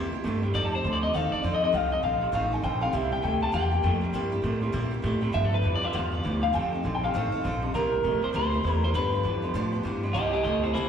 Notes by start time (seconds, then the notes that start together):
Already playing: E2 C3 G3 A#3 E4 G4
0.12 A#3 E4 G4
0.24 G2 C3 G3 A3 A#3 E4 G4
0.42 C3 G3 A#3 E4 G4
0.54 F2 C3 F3 C4 D#4 A4 D5
0.65 A4
0.73 C4 D#4 A4 C5
0.83 D2 F2 D3 F3 C4 D#4 A4
0.93 D5
1.03 F2 C3 C4 D#4 A4 D#5
1.13 D#2 F2 D#3 F3 C4 D#4 A4 F5
1.32 C4 D#4 A4 D5, muted upright bass stroke
1.43 F2 D3 F3 C4 D#4 A4
1.55 D#5
1.62 F2 C3 C4 D#4 A4 D#5
1.72 C2 F2 C3 F3 C4 D#4 A4 F5
1.92 C4 D#4 A4 D#5
2.03 A#1 F2 D3 F3 C4 D#4 A4 F5
2.21 F2 C3 C4 D#4 A4
2.32 A1 F2 D#3 F3 C4 D#4 A4 F5
2.52 C4 D#4 A4 G5
2.62 A#1 F2 D3 F3 C4 D#4 A4 G5
2.81 F2 C3 C4 D#4 A4 F5
2.93 C2 C3 G3 A#3 E4 G4 E5
3.12 A#3 E4 G4 G5
3.22 D2 C3 G3 A3 A#3 E4 G4 G5
3.41 C3 G3 A#3 E4 G4 A5
3.52 E2 C3 G3 A#3 E4 G4 G5
3.71 A#3 E4 G4
3.83 F2 C3 G3 A3 A#3 E4 G4
4.01 C3 G3 A#3 E4 G4
4.13 G2 C3 G3 A#3 E4 G4
4.32 A#3 E4 G4
4.42 A2 C3 G3 A3 A#3 E4 G4
4.61 C3 G3 A#3 E4 G4
4.72 A#2 C3 G3 A#3 E4 G4
4.91 A#3 E4 G4
5.02 A2 C3 G3 A3 A#3 E4 G4
5.21 C3 G3 A#3 E4 G4
5.32 G2 D3 F3 B3 F4 G4 E5
5.45 A4
5.51 F3 B3 F4 G4 B4
5.62 F2 G2 E3 F3 B3 F4 G4
5.75 D5
5.81 G2 D3 F3 B3 F4 G4 E5
5.93 E2 G2 D3 F3 B3 F4 G4 F5
6.12 F3 B3 F4 G4 D5
6.23 D2 G2 E3 F3 B3 F4 G4
6.42 G2 D3 F3 B3 F4 G4 F5
6.53 F2 C3 F3 C4 D#4 A4 G5
6.72 C4 D#4 A4
6.83 A#1 F2 D3 F3 C4 D#4 A4
6.95 G5
7.03 F2 C3 C4 D#4 A4 F5
7.14 A1 F2 D#3 F3 C4 D#4 A4
7.32 C4 D#4 A4, muted upright bass stroke
7.44 A#1 F2 D3 F3 C4 D#4 A4
7.62 F2 C3 C4 D#4 A4
7.74 C2 C3 G3 A#3 E4 G4 A#4
7.92 A#3 E4 G4
8.03 A#1 C3 G3 A3 A#3 E4 G4
8.22 C3 G3 A#3 E4 G4 C5, muted upright bass stroke
8.33 D2 C3 G3 A#3 E4 G4 C5
8.52 A#3 E4 G4
8.63 E2 C3 G3 A3 A#3 E4 G4
8.83 C3 G3 A#3 E4 G4 C5
8.94 G2 D3 F3 B3 D4 G4 B4
9.12 F3 B3 D4 G4
9.23 F2 G2 E3 F3 B3 D4 G4
9.42 G2 D3 F3 B3 D4 G4
9.54 G2 A2 D3 F3 B3 D4 G4
9.73 F3 B3 D4 G4
9.83 G2 E3 F3 B3 D4 G4
10.03 G2 D3 F3 B3 D4 G4
10.13 C2 C3 G3 A#3 E4 G4 D#5
10.33 A#3 E4 G4 D#5
10.43 D2 C3 G3 A3 A#3 E4 G4 D#5
10.47 G4
10.62 C3 G3 A#3 E4 G4 C5
10.74 C2 C3 G3 A#3 E4 G4 C5